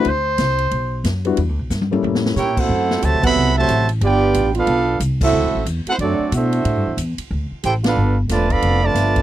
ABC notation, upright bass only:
X:1
M:4/4
L:1/8
Q:"Swing" 1/4=182
K:Ador
V:1 name="Upright bass" clef=bass
D,,2 C,,2 B,,,2 F,,2 | (3E,, D,, B,,, G,,2 A,,2 _B,,2 | [K:D] F,,2 (3D,, =C,, A,,, C,,2 A,,,2 | G,,,2 A,,,2 B,,,2 =C,,2 |
(3D,, =C,, A,,, E,, z F,, z B,,2 | (3A,, G,, E,, E,, z D,, z A,,,2 | G,,,2 E,,,2 =F,,,2 G,,,2 |]